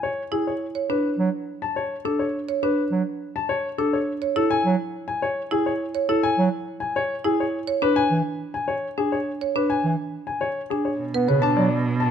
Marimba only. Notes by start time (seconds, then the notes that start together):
0.32 E4
0.75 C#5
0.90 D4
2.05 D4
2.49 C#5
2.63 D4
3.79 D4
4.22 C#5
4.36 E4
5.51 E4
5.95 C#5
6.09 E4
7.24 E4
7.67 C#5
7.82 D4
8.98 D4
9.41 C#5
9.56 D4
10.71 D4
11.14 B4
11.29 C#5
11.43 D4